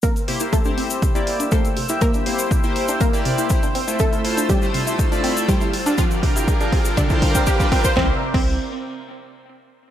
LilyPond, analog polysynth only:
\new Staff \with { instrumentName = "Analog polysynth" } { \time 4/4 \key c \mixolydian \tempo 4 = 121 r8 <bes e' g' c''>8. <c' e' g' c''>4 <bes e' g' d''>8. <bes e' g' c''>16 r8 <bes e' g' e''>16~ | <bes e' g' e''>8 <bes e' g' c''>8. <bes e' g' c''>4 <bes e' g' d''>8. <bes e' g' c''>16 r8 <a e' f' e''>16~ | <a e' f' e''>8 <a e' f' c''>8. <a e' f' c''>4 <a e' f' d''>8. <e' f' c''>16 r8 <g d' f' d''>16~ | <g d' f' d''>8 <g d' f' bes'>8. <g d' f' bes'>4 <g d' f' c''>8. r16 <g d' f' g'>16 <g d' f' bes'>16 r16 |
<bes e' g' c''>16 r8 <bes e' g' c''>8 r2 r8. | }